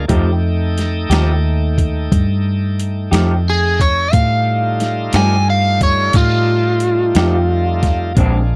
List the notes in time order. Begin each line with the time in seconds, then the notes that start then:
0.08 F2 F3 A3 D#4 G4 G5, kick, closed hi-hat
0.78 snare, closed hi-hat
1.10 D#2 F3 A3 D#4 G4, snare, closed hi-hat
1.78 kick, closed hi-hat
2.12 G2, kick, closed hi-hat
2.80 closed hi-hat
3.11 F2 F3 A3 D#4 G4, snare, closed hi-hat
3.50 G#4
3.80 C#5, kick, closed hi-hat
4.11 A2 G3 A3 D#4 F4 F5, kick, closed hi-hat
4.80 snare, closed hi-hat
5.13 G2 A3 D#4 G4 G#5, snare, closed hi-hat
5.17 F3
5.50 F5
5.81 C#5, kick, closed hi-hat
6.13 A2 F4, kick, closed hi-hat
6.80 closed hi-hat
7.15 F2 F3 A3 D#4 G4, snare, closed hi-hat
7.83 kick, snare, closed hi-hat
8.14 A#1 A#2 G#3 A#3 C4 D4 F4, kick, closed hi-hat
8.19 D4